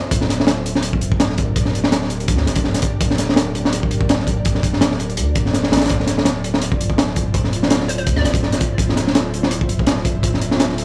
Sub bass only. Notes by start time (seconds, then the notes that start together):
0.11 D1
1.56 D1
2.28 D2
2.46 F1
2.56 D1
3.01 D1
4.46 D1
5.17 D2
5.36 D1
5.72 A1
5.91 D1
7.34 D1
8.07 D2
8.25 F1
8.34 D1
8.78 D1
10.23 D1